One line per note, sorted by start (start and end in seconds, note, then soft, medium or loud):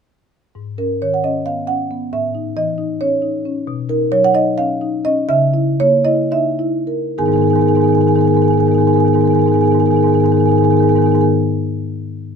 0.55 2.09 G#2 soft
0.78 1.15 C#4 soft
0.78 1.00 A#4 medium
1.02 1.37 D#3 soft
1.02 1.13 C#5 medium
1.14 1.24 F#5 medium
1.24 1.59 C#4 soft
1.24 1.45 D#5 medium
1.46 1.68 B3 soft
1.46 1.67 F5 medium
1.67 2.03 C#4 soft
1.67 2.11 F#5 medium
1.91 2.13 B3 soft
2.13 3.64 A2 medium
2.13 2.55 E5 medium
2.35 2.70 D#4 soft
2.57 2.92 E3 soft
2.57 2.99 D#5 medium
2.78 3.14 D#4 soft
3.01 3.23 C#4 soft
3.01 3.65 C#5 medium
3.22 3.58 D#4 soft
3.45 3.68 C#4 soft
3.67 5.26 B2 medium
3.89 4.26 D#4 medium
3.89 4.11 A#4 medium
4.12 4.49 F#3 medium
4.12 4.24 C#5 loud
4.24 4.36 F#5 medium
4.34 4.72 D#4 medium
4.34 4.57 D#5 medium
4.58 4.82 C#4 soft
4.58 5.04 F5 loud
4.81 5.20 D#4 medium
5.05 5.30 C#4 medium
5.05 5.29 D#5 loud
5.29 7.15 C#3 medium
5.29 5.77 E5 loud
5.54 5.95 E4 medium
5.80 6.22 A#3 medium
5.80 6.05 C#5 loud
6.05 6.49 E4 medium
6.05 6.31 D#5 loud
6.31 6.60 D#4 soft
6.31 7.15 E5 medium
6.59 7.07 E4 medium
6.87 7.17 A#4 medium
7.18 7.28 G#2 medium
7.18 7.28 D#3 medium
7.18 7.27 B3 medium
7.18 7.26 D#4 medium
7.18 7.26 G#4 soft
7.18 7.26 A#4 soft
7.18 7.26 G#5 medium
7.26 7.38 G#2 medium
7.26 7.36 D#3 soft
7.26 7.36 B3 soft
7.26 7.33 D#4 soft
7.26 7.33 G#4 soft
7.26 7.34 A#4 soft
7.26 7.32 G#5 medium
7.32 7.43 B3 soft
7.32 7.42 D#4 soft
7.32 7.40 G#4 soft
7.32 7.41 A#4 soft
7.32 7.38 G#5 medium
7.36 7.47 G#2 medium
7.36 7.44 D#3 soft
7.36 7.47 G#4 soft
7.36 7.43 G#5 medium
7.41 7.53 D#3 soft
7.41 7.51 B3 soft
7.41 7.51 D#4 soft
7.41 7.48 A#4 soft
7.41 7.50 G#5 medium
7.47 7.56 G#2 medium
7.47 7.53 G#4 soft
7.47 7.55 A#4 soft
7.47 7.56 G#5 medium
7.51 7.62 D#3 medium
7.51 7.59 B3 soft
7.51 7.59 D#4 soft
7.51 7.61 G#4 soft
7.55 7.66 G#2 medium
7.55 7.67 B3 soft
7.55 7.62 A#4 soft
7.55 7.61 G#5 medium
7.59 7.71 D#3 soft
7.59 7.68 D#4 soft
7.59 7.67 G#4 soft
7.59 7.69 A#4 soft
7.59 7.68 G#5 medium
7.66 7.77 G#2 medium
7.66 7.75 B3 soft
7.66 7.76 D#4 soft
7.66 7.74 G#4 soft
7.66 7.76 A#4 soft
7.66 7.75 G#5 medium
7.71 7.80 D#3 medium
7.71 7.81 G#4 soft
7.75 7.87 G#2 medium
7.75 7.84 B3 soft
7.75 7.85 D#4 soft
7.75 7.84 A#4 soft
7.75 7.82 G#5 medium
7.80 7.89 D#3 soft
7.80 7.93 B3 soft
7.80 7.88 G#4 soft
7.80 7.90 A#4 soft
7.80 7.88 G#5 medium
7.85 7.97 G#2 medium
7.85 7.93 D#4 soft
7.85 7.95 G#4 soft
7.85 7.95 G#5 medium
7.89 7.98 D#3 medium
7.89 8.01 B3 soft
7.89 8.01 D#4 soft
7.89 7.97 A#4 soft
7.95 8.07 G#2 medium
7.95 8.07 D#3 soft
7.95 8.02 G#4 soft
7.95 8.04 A#4 soft
7.95 8.01 G#5 medium
8.01 8.09 B3 soft
8.01 8.07 D#4 soft
8.01 8.08 G#4 soft
8.01 8.12 A#4 soft
8.01 8.08 G#5 medium
8.07 8.17 G#2 medium
8.07 8.16 D#3 soft
8.07 8.19 B3 soft
8.07 8.16 D#4 soft
8.07 8.15 G#4 soft
8.07 8.15 G#5 medium
8.12 8.22 G#4 soft
8.12 8.18 A#4 soft
8.12 8.21 G#5 medium
8.16 8.27 G#2 medium
8.16 8.25 D#3 soft
8.16 8.27 B3 soft
8.16 8.24 D#4 soft
8.16 8.25 A#4 soft
8.21 8.33 D#4 soft
8.21 8.29 G#4 soft
8.21 8.31 A#4 soft
8.21 8.28 G#5 medium
8.25 8.37 G#2 medium
8.25 8.34 D#3 medium
8.25 8.37 B3 soft
8.25 8.35 G#5 medium
8.29 8.42 D#4 soft
8.29 8.37 G#4 soft
8.29 8.37 A#4 soft
8.34 8.47 G#2 medium
8.34 8.42 D#3 soft
8.34 8.45 B3 soft
8.34 8.44 G#4 soft
8.34 8.44 A#4 soft
8.34 8.42 G#5 medium
8.42 8.51 D#3 medium
8.42 8.54 B3 soft
8.42 8.50 D#4 soft
8.42 8.51 G#4 soft
8.42 8.51 A#4 soft
8.42 8.48 G#5 medium
8.47 8.57 G#2 medium
8.47 8.60 D#3 soft
8.47 8.59 D#4 soft
8.47 8.58 G#4 soft
8.47 8.58 A#4 soft
8.47 8.54 G#5 medium
8.54 8.68 G#2 medium
8.54 8.63 B3 soft
8.54 8.60 G#5 medium
8.58 8.69 D#3 medium
8.58 8.66 D#4 soft
8.58 8.65 G#4 soft
8.58 8.65 A#4 soft
8.58 8.67 G#5 medium
8.63 8.72 B3 soft
8.63 8.75 D#4 soft
8.63 8.72 G#4 soft
8.63 8.72 A#4 soft
8.67 8.78 G#2 soft
8.67 8.78 D#3 soft
8.67 8.74 G#5 medium
8.72 8.80 B3 soft
8.72 8.82 D#4 soft
8.72 8.78 G#4 soft
8.72 8.79 A#4 soft
8.72 8.80 G#5 medium
8.78 8.87 G#2 medium
8.78 8.87 D#3 soft
8.78 8.88 B3 soft
8.78 8.90 D#4 soft
8.78 8.86 G#4 soft
8.78 8.85 A#4 soft
8.78 8.87 G#5 medium
8.85 8.96 G#2 medium
8.85 8.96 D#3 soft
8.85 8.97 B3 soft
8.85 8.93 G#4 soft
8.85 8.93 A#4 soft
8.85 8.94 G#5 medium
8.90 8.98 D#4 soft
8.90 9.00 G#4 soft
8.90 9.00 A#4 soft
8.94 9.05 G#2 medium
8.94 9.04 D#3 soft
8.94 9.05 B3 soft
8.94 9.06 D#4 soft
8.94 9.00 G#5 medium
9.00 9.08 G#4 soft
9.00 9.06 A#4 soft
9.00 9.08 G#5 medium
9.04 9.15 G#2 medium
9.04 9.14 D#3 soft
9.04 9.13 B3 soft
9.04 9.14 D#4 soft
9.04 9.15 G#4 soft
9.04 9.13 A#4 soft
9.04 9.15 G#5 medium
9.13 9.24 G#2 medium
9.13 9.24 D#3 medium
9.13 9.20 B3 soft
9.13 9.23 D#4 soft
9.13 9.21 G#4 soft
9.13 9.19 A#4 soft
9.13 9.21 G#5 medium
9.19 9.30 B3 soft
9.19 9.31 D#4 soft
9.19 9.29 G#4 soft
9.19 9.25 A#4 soft
9.19 9.28 G#5 medium
9.24 9.35 G#2 medium
9.24 9.34 D#3 soft
9.24 9.32 A#4 soft
9.24 9.35 G#5 medium
9.29 9.39 B3 soft
9.29 9.39 D#4 soft
9.29 9.35 G#4 soft
9.29 9.39 A#4 soft
9.34 9.46 G#2 medium
9.34 9.43 D#3 medium
9.34 9.44 G#4 soft
9.34 9.42 G#5 medium
9.39 9.52 D#3 soft
9.39 9.46 B3 soft
9.39 9.48 D#4 soft
9.39 9.46 A#4 soft
9.39 9.48 G#5 medium
9.44 9.55 G#2 medium
9.44 9.54 B3 soft
9.44 9.55 D#4 soft
9.44 9.51 G#4 soft
9.44 9.52 A#4 soft
9.48 9.62 D#3 medium
9.48 9.58 G#4 soft
9.48 9.59 A#4 soft
9.48 9.54 G#5 medium
9.54 9.65 G#2 medium
9.54 9.63 B3 soft
9.54 9.64 D#4 soft
9.54 9.61 G#5 medium
9.58 9.72 D#3 soft
9.58 9.65 G#4 soft
9.58 9.65 A#4 soft
9.58 9.67 G#5 medium
9.63 9.74 G#2 medium
9.63 9.71 B3 soft
9.63 9.72 D#4 soft
9.63 9.72 G#4 soft
9.63 9.72 A#4 soft
9.67 9.80 B3 soft
9.67 9.74 G#5 medium
9.72 9.85 G#2 medium
9.72 9.82 D#3 soft
9.72 9.80 D#4 soft
9.72 9.79 G#4 soft
9.72 9.80 A#4 soft
9.72 9.80 G#5 medium
9.79 9.90 D#3 soft
9.79 9.87 B3 soft
9.79 9.88 D#4 soft
9.79 9.86 G#4 soft
9.79 9.86 A#4 soft
9.79 9.86 G#5 medium
9.85 9.95 G#2 medium
9.85 9.94 B3 soft
9.85 9.96 D#4 soft
9.85 9.93 G#4 soft
9.85 9.93 A#4 soft
9.85 9.91 G#5 medium
9.90 9.99 D#3 soft
9.90 10.00 G#4 soft
9.90 10.01 A#4 soft
9.90 9.97 G#5 medium
9.94 10.04 G#2 medium
9.94 10.04 B3 soft
9.94 10.06 D#4 soft
9.94 10.03 G#5 medium
9.99 10.07 D#3 soft
9.99 10.07 G#4 soft
9.99 10.09 A#4 soft
9.99 10.08 G#5 medium
10.04 10.15 G#2 medium
10.04 10.15 D#3 medium
10.04 10.12 B3 soft
10.04 10.15 D#4 soft
10.04 10.13 G#4 soft
10.08 10.17 A#4 soft
10.08 10.14 G#5 medium
10.12 10.24 G#2 medium
10.12 10.23 D#3 soft
10.12 10.20 B3 soft
10.12 10.24 D#4 soft
10.12 10.22 G#4 soft
10.12 10.20 G#5 medium
10.17 10.28 B3 soft
10.17 10.24 A#4 soft
10.17 10.26 G#5 medium
10.22 10.34 G#2 medium
10.22 10.32 D#3 soft
10.22 10.32 D#4 soft
10.22 10.28 G#4 soft
10.22 10.30 A#4 soft
10.26 10.37 B3 soft
10.26 10.34 G#4 soft
10.26 10.37 A#4 soft
10.26 10.32 G#5 medium
10.32 10.44 G#2 medium
10.32 10.41 D#3 soft
10.32 10.40 D#4 soft
10.32 10.42 G#4 soft
10.32 10.39 G#5 medium
10.37 10.47 B3 soft
10.37 10.49 D#4 soft
10.37 10.43 A#4 soft
10.37 10.46 G#5 medium
10.41 10.53 G#2 medium
10.41 10.51 D#3 soft
10.41 10.49 G#4 soft
10.41 10.50 A#4 soft
10.46 10.55 B3 soft
10.46 10.57 D#4 soft
10.46 10.56 G#4 soft
10.46 10.52 G#5 medium
10.50 10.62 G#2 medium
10.50 10.61 D#3 soft
10.50 10.57 A#4 soft
10.50 10.58 G#5 medium
10.55 10.63 B3 soft
10.55 10.65 D#4 soft
10.55 10.64 G#4 soft
10.55 10.63 A#4 soft
10.55 10.65 G#5 medium
10.61 10.74 G#2 medium
10.61 10.70 D#3 medium
10.61 10.73 B3 soft
10.61 10.72 D#4 soft
10.61 10.70 G#4 soft
10.61 10.71 A#4 soft
10.61 10.70 G#5 medium
10.70 10.81 D#3 soft
10.70 10.81 B3 soft
10.70 10.80 D#4 soft
10.70 10.77 G#4 soft
10.70 10.79 A#4 soft
10.70 10.77 G#5 medium
10.74 10.83 G#2 medium
10.74 10.84 G#4 soft
10.74 10.83 G#5 medium
10.79 10.89 D#3 soft
10.79 10.89 B3 soft
10.79 10.88 D#4 soft
10.79 10.86 A#4 soft
10.79 10.89 G#5 medium
10.83 10.95 G#2 medium
10.83 10.91 G#4 soft
10.83 10.92 A#4 soft
10.88 10.98 D#3 soft
10.88 10.97 B3 soft
10.88 10.96 D#4 soft
10.88 10.98 G#4 soft
10.88 10.96 G#5 medium
10.92 11.04 G#2 medium
10.92 11.00 A#4 soft
10.96 11.07 D#3 medium
10.96 11.06 B3 soft
10.96 11.04 D#4 soft
10.96 11.06 G#4 soft
10.96 11.07 A#4 soft
10.96 11.02 G#5 medium
11.02 11.14 G#2 medium
11.02 11.15 B3 soft
11.02 11.12 D#4 soft
11.02 11.09 G#5 medium
11.06 11.15 D#3 soft
11.06 11.13 G#4 soft
11.06 11.15 A#4 soft
11.06 11.16 G#5 medium
11.12 11.24 G#2 medium
11.12 11.24 D#3 soft
11.12 11.23 B3 soft
11.12 11.21 D#4 soft
11.12 11.19 G#4 soft
11.12 11.21 A#4 soft
11.12 11.21 G#5 medium
11.19 11.28 D#4 soft
11.19 11.28 G#4 soft
11.19 11.28 A#4 soft
11.19 11.29 G#5 medium
11.23 11.29 G#2 medium
11.23 11.28 D#3 soft
11.23 11.28 B3 soft